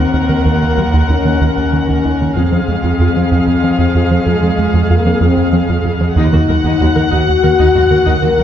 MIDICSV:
0, 0, Header, 1, 6, 480
1, 0, Start_track
1, 0, Tempo, 634921
1, 346, Time_signature, 6, 3, 24, 8
1, 6378, End_track
2, 0, Start_track
2, 0, Title_t, "Viola section"
2, 0, Program_c, 0, 48
2, 0, Note_on_c, 0, 70, 47
2, 0, Note_on_c, 0, 78, 49
2, 1756, Note_off_c, 0, 70, 0
2, 1757, Note_off_c, 0, 78, 0
2, 1781, Note_on_c, 0, 68, 51
2, 1783, Note_on_c, 0, 77, 48
2, 4634, Note_off_c, 0, 68, 0
2, 4634, Note_off_c, 0, 77, 0
2, 4663, Note_on_c, 0, 63, 70
2, 4663, Note_on_c, 0, 78, 60
2, 4711, Note_off_c, 0, 63, 0
2, 4785, Note_on_c, 0, 66, 42
2, 4833, Note_off_c, 0, 66, 0
2, 4902, Note_on_c, 0, 70, 43
2, 4951, Note_off_c, 0, 70, 0
2, 5026, Note_on_c, 0, 63, 60
2, 5074, Note_off_c, 0, 63, 0
2, 5139, Note_on_c, 0, 66, 44
2, 5188, Note_off_c, 0, 66, 0
2, 5255, Note_on_c, 0, 70, 44
2, 5305, Note_off_c, 0, 70, 0
2, 5372, Note_on_c, 0, 63, 57
2, 5423, Note_off_c, 0, 63, 0
2, 5617, Note_on_c, 0, 70, 53
2, 5667, Note_off_c, 0, 70, 0
2, 5740, Note_on_c, 0, 63, 69
2, 5789, Note_off_c, 0, 63, 0
2, 5861, Note_on_c, 0, 66, 43
2, 5910, Note_off_c, 0, 66, 0
2, 5983, Note_on_c, 0, 70, 48
2, 6031, Note_off_c, 0, 70, 0
2, 6094, Note_on_c, 0, 63, 66
2, 6144, Note_off_c, 0, 63, 0
2, 6219, Note_on_c, 0, 66, 40
2, 6269, Note_off_c, 0, 66, 0
2, 6340, Note_on_c, 0, 70, 48
2, 6378, Note_off_c, 0, 70, 0
2, 6378, Note_off_c, 0, 78, 0
2, 6378, End_track
3, 0, Start_track
3, 0, Title_t, "French horn section"
3, 0, Program_c, 1, 60
3, 0, Note_on_c, 1, 60, 64
3, 341, Note_on_c, 1, 58, 54
3, 346, Note_off_c, 1, 60, 0
3, 682, Note_off_c, 1, 58, 0
3, 811, Note_on_c, 1, 61, 63
3, 1052, Note_off_c, 1, 61, 0
3, 1061, Note_on_c, 1, 61, 62
3, 1769, Note_off_c, 1, 61, 0
3, 1777, Note_on_c, 1, 60, 61
3, 3221, Note_off_c, 1, 60, 0
3, 3225, Note_on_c, 1, 56, 62
3, 3698, Note_on_c, 1, 58, 61
3, 3706, Note_off_c, 1, 56, 0
3, 3942, Note_off_c, 1, 58, 0
3, 3945, Note_on_c, 1, 60, 68
3, 4186, Note_off_c, 1, 60, 0
3, 4660, Note_on_c, 1, 63, 74
3, 5353, Note_off_c, 1, 63, 0
3, 5383, Note_on_c, 1, 66, 83
3, 6105, Note_off_c, 1, 66, 0
3, 6113, Note_on_c, 1, 70, 89
3, 6378, Note_off_c, 1, 70, 0
3, 6378, End_track
4, 0, Start_track
4, 0, Title_t, "Synth arpeggio sound"
4, 0, Program_c, 2, 84
4, 106, Note_on_c, 2, 63, 50
4, 178, Note_off_c, 2, 63, 0
4, 227, Note_on_c, 2, 58, 51
4, 299, Note_off_c, 2, 58, 0
4, 347, Note_on_c, 2, 51, 69
4, 419, Note_off_c, 2, 51, 0
4, 471, Note_on_c, 2, 58, 51
4, 541, Note_off_c, 2, 58, 0
4, 590, Note_on_c, 2, 54, 46
4, 661, Note_off_c, 2, 54, 0
4, 708, Note_on_c, 2, 51, 69
4, 780, Note_off_c, 2, 51, 0
4, 829, Note_on_c, 2, 63, 52
4, 900, Note_off_c, 2, 63, 0
4, 952, Note_on_c, 2, 58, 53
4, 1023, Note_off_c, 2, 58, 0
4, 1070, Note_on_c, 2, 51, 70
4, 1141, Note_off_c, 2, 51, 0
4, 1312, Note_on_c, 2, 58, 49
4, 1383, Note_off_c, 2, 58, 0
4, 1424, Note_on_c, 2, 51, 72
4, 1497, Note_off_c, 2, 51, 0
4, 1550, Note_on_c, 2, 63, 54
4, 1621, Note_off_c, 2, 63, 0
4, 1668, Note_on_c, 2, 58, 48
4, 1740, Note_off_c, 2, 58, 0
4, 1788, Note_on_c, 2, 53, 76
4, 1859, Note_off_c, 2, 53, 0
4, 1911, Note_on_c, 2, 60, 56
4, 1981, Note_off_c, 2, 60, 0
4, 2037, Note_on_c, 2, 56, 48
4, 2106, Note_off_c, 2, 56, 0
4, 2153, Note_on_c, 2, 53, 67
4, 2223, Note_off_c, 2, 53, 0
4, 2278, Note_on_c, 2, 65, 53
4, 2346, Note_off_c, 2, 65, 0
4, 2398, Note_on_c, 2, 60, 53
4, 2466, Note_off_c, 2, 60, 0
4, 2514, Note_on_c, 2, 53, 78
4, 2584, Note_off_c, 2, 53, 0
4, 2753, Note_on_c, 2, 60, 53
4, 2823, Note_off_c, 2, 60, 0
4, 2870, Note_on_c, 2, 53, 72
4, 2941, Note_off_c, 2, 53, 0
4, 2994, Note_on_c, 2, 65, 57
4, 3063, Note_off_c, 2, 65, 0
4, 3111, Note_on_c, 2, 60, 52
4, 3182, Note_off_c, 2, 60, 0
4, 3231, Note_on_c, 2, 53, 67
4, 3301, Note_off_c, 2, 53, 0
4, 3348, Note_on_c, 2, 60, 59
4, 3420, Note_off_c, 2, 60, 0
4, 3472, Note_on_c, 2, 56, 52
4, 3542, Note_off_c, 2, 56, 0
4, 3591, Note_on_c, 2, 53, 70
4, 3662, Note_off_c, 2, 53, 0
4, 3709, Note_on_c, 2, 65, 54
4, 3780, Note_off_c, 2, 65, 0
4, 3831, Note_on_c, 2, 60, 54
4, 3902, Note_off_c, 2, 60, 0
4, 3944, Note_on_c, 2, 53, 79
4, 4017, Note_off_c, 2, 53, 0
4, 4184, Note_on_c, 2, 60, 53
4, 4257, Note_off_c, 2, 60, 0
4, 4304, Note_on_c, 2, 53, 82
4, 4377, Note_off_c, 2, 53, 0
4, 4419, Note_on_c, 2, 65, 51
4, 4493, Note_off_c, 2, 65, 0
4, 4542, Note_on_c, 2, 60, 55
4, 4615, Note_off_c, 2, 60, 0
4, 4665, Note_on_c, 2, 51, 77
4, 4737, Note_off_c, 2, 51, 0
4, 4785, Note_on_c, 2, 58, 56
4, 4858, Note_off_c, 2, 58, 0
4, 4909, Note_on_c, 2, 54, 51
4, 4980, Note_off_c, 2, 54, 0
4, 5024, Note_on_c, 2, 51, 72
4, 5097, Note_off_c, 2, 51, 0
4, 5148, Note_on_c, 2, 63, 60
4, 5220, Note_off_c, 2, 63, 0
4, 5271, Note_on_c, 2, 58, 55
4, 5342, Note_off_c, 2, 58, 0
4, 5387, Note_on_c, 2, 51, 72
4, 5459, Note_off_c, 2, 51, 0
4, 5625, Note_on_c, 2, 58, 51
4, 5697, Note_off_c, 2, 58, 0
4, 5738, Note_on_c, 2, 51, 77
4, 5813, Note_off_c, 2, 51, 0
4, 5860, Note_on_c, 2, 63, 55
4, 5934, Note_off_c, 2, 63, 0
4, 5978, Note_on_c, 2, 58, 57
4, 6053, Note_off_c, 2, 58, 0
4, 6102, Note_on_c, 2, 51, 77
4, 6175, Note_off_c, 2, 51, 0
4, 6221, Note_on_c, 2, 58, 62
4, 6294, Note_off_c, 2, 58, 0
4, 6340, Note_on_c, 2, 54, 51
4, 6378, Note_off_c, 2, 54, 0
4, 6378, End_track
5, 0, Start_track
5, 0, Title_t, "Analog synth bass"
5, 0, Program_c, 3, 38
5, 103, Note_on_c, 3, 39, 50
5, 176, Note_off_c, 3, 39, 0
5, 222, Note_on_c, 3, 51, 48
5, 295, Note_off_c, 3, 51, 0
5, 346, Note_on_c, 3, 39, 76
5, 418, Note_off_c, 3, 39, 0
5, 473, Note_on_c, 3, 51, 49
5, 543, Note_off_c, 3, 51, 0
5, 589, Note_on_c, 3, 39, 47
5, 660, Note_off_c, 3, 39, 0
5, 709, Note_on_c, 3, 39, 69
5, 780, Note_off_c, 3, 39, 0
5, 826, Note_on_c, 3, 39, 57
5, 898, Note_off_c, 3, 39, 0
5, 946, Note_on_c, 3, 51, 49
5, 1018, Note_off_c, 3, 51, 0
5, 1070, Note_on_c, 3, 39, 70
5, 1141, Note_off_c, 3, 39, 0
5, 1192, Note_on_c, 3, 39, 47
5, 1262, Note_off_c, 3, 39, 0
5, 1308, Note_on_c, 3, 51, 51
5, 1380, Note_off_c, 3, 51, 0
5, 1439, Note_on_c, 3, 39, 75
5, 1507, Note_off_c, 3, 39, 0
5, 1553, Note_on_c, 3, 39, 51
5, 1623, Note_off_c, 3, 39, 0
5, 1677, Note_on_c, 3, 51, 52
5, 1745, Note_off_c, 3, 51, 0
5, 1791, Note_on_c, 3, 41, 70
5, 1862, Note_off_c, 3, 41, 0
5, 1906, Note_on_c, 3, 53, 49
5, 1978, Note_off_c, 3, 53, 0
5, 2027, Note_on_c, 3, 41, 53
5, 2099, Note_off_c, 3, 41, 0
5, 2148, Note_on_c, 3, 41, 73
5, 2220, Note_off_c, 3, 41, 0
5, 2266, Note_on_c, 3, 41, 57
5, 2338, Note_off_c, 3, 41, 0
5, 2389, Note_on_c, 3, 53, 46
5, 2460, Note_off_c, 3, 53, 0
5, 2508, Note_on_c, 3, 41, 79
5, 2579, Note_off_c, 3, 41, 0
5, 2627, Note_on_c, 3, 41, 51
5, 2699, Note_off_c, 3, 41, 0
5, 2749, Note_on_c, 3, 53, 55
5, 2820, Note_off_c, 3, 53, 0
5, 2863, Note_on_c, 3, 41, 77
5, 2936, Note_off_c, 3, 41, 0
5, 2987, Note_on_c, 3, 41, 53
5, 3059, Note_off_c, 3, 41, 0
5, 3109, Note_on_c, 3, 53, 48
5, 3180, Note_off_c, 3, 53, 0
5, 3223, Note_on_c, 3, 41, 78
5, 3296, Note_off_c, 3, 41, 0
5, 3345, Note_on_c, 3, 53, 50
5, 3417, Note_off_c, 3, 53, 0
5, 3465, Note_on_c, 3, 41, 43
5, 3538, Note_off_c, 3, 41, 0
5, 3583, Note_on_c, 3, 41, 76
5, 3656, Note_off_c, 3, 41, 0
5, 3707, Note_on_c, 3, 41, 56
5, 3779, Note_off_c, 3, 41, 0
5, 3825, Note_on_c, 3, 53, 51
5, 3897, Note_off_c, 3, 53, 0
5, 3938, Note_on_c, 3, 41, 79
5, 4012, Note_off_c, 3, 41, 0
5, 4059, Note_on_c, 3, 41, 48
5, 4133, Note_off_c, 3, 41, 0
5, 4181, Note_on_c, 3, 53, 57
5, 4254, Note_off_c, 3, 53, 0
5, 4306, Note_on_c, 3, 41, 80
5, 4378, Note_off_c, 3, 41, 0
5, 4427, Note_on_c, 3, 41, 53
5, 4499, Note_off_c, 3, 41, 0
5, 4541, Note_on_c, 3, 53, 57
5, 4615, Note_off_c, 3, 53, 0
5, 4657, Note_on_c, 3, 39, 77
5, 4732, Note_off_c, 3, 39, 0
5, 4782, Note_on_c, 3, 51, 54
5, 4855, Note_off_c, 3, 51, 0
5, 4907, Note_on_c, 3, 39, 48
5, 4978, Note_off_c, 3, 39, 0
5, 5021, Note_on_c, 3, 39, 77
5, 5095, Note_off_c, 3, 39, 0
5, 5146, Note_on_c, 3, 39, 57
5, 5218, Note_off_c, 3, 39, 0
5, 5263, Note_on_c, 3, 51, 53
5, 5336, Note_off_c, 3, 51, 0
5, 5385, Note_on_c, 3, 39, 82
5, 5457, Note_off_c, 3, 39, 0
5, 5510, Note_on_c, 3, 39, 47
5, 5581, Note_off_c, 3, 39, 0
5, 5624, Note_on_c, 3, 51, 60
5, 5696, Note_off_c, 3, 51, 0
5, 5743, Note_on_c, 3, 39, 85
5, 5816, Note_off_c, 3, 39, 0
5, 5858, Note_on_c, 3, 39, 52
5, 5932, Note_off_c, 3, 39, 0
5, 5979, Note_on_c, 3, 51, 57
5, 6053, Note_off_c, 3, 51, 0
5, 6098, Note_on_c, 3, 39, 85
5, 6172, Note_off_c, 3, 39, 0
5, 6220, Note_on_c, 3, 51, 50
5, 6294, Note_off_c, 3, 51, 0
5, 6343, Note_on_c, 3, 39, 52
5, 6378, Note_off_c, 3, 39, 0
5, 6378, End_track
6, 0, Start_track
6, 0, Title_t, "Cello section"
6, 0, Program_c, 4, 48
6, 0, Note_on_c, 4, 39, 38
6, 1757, Note_off_c, 4, 39, 0
6, 1781, Note_on_c, 4, 41, 46
6, 4633, Note_off_c, 4, 41, 0
6, 4670, Note_on_c, 4, 39, 66
6, 4717, Note_off_c, 4, 39, 0
6, 4789, Note_on_c, 4, 39, 48
6, 4837, Note_off_c, 4, 39, 0
6, 4910, Note_on_c, 4, 39, 41
6, 4957, Note_off_c, 4, 39, 0
6, 5038, Note_on_c, 4, 39, 69
6, 5084, Note_off_c, 4, 39, 0
6, 5160, Note_on_c, 4, 39, 48
6, 5205, Note_off_c, 4, 39, 0
6, 5278, Note_on_c, 4, 39, 45
6, 5324, Note_off_c, 4, 39, 0
6, 5399, Note_on_c, 4, 39, 68
6, 5444, Note_off_c, 4, 39, 0
6, 5640, Note_on_c, 4, 39, 43
6, 5685, Note_off_c, 4, 39, 0
6, 5758, Note_on_c, 4, 39, 74
6, 5803, Note_off_c, 4, 39, 0
6, 5877, Note_on_c, 4, 39, 50
6, 5923, Note_off_c, 4, 39, 0
6, 5996, Note_on_c, 4, 39, 48
6, 6042, Note_off_c, 4, 39, 0
6, 6115, Note_on_c, 4, 39, 65
6, 6161, Note_off_c, 4, 39, 0
6, 6235, Note_on_c, 4, 39, 46
6, 6282, Note_off_c, 4, 39, 0
6, 6352, Note_on_c, 4, 39, 45
6, 6378, Note_off_c, 4, 39, 0
6, 6378, End_track
0, 0, End_of_file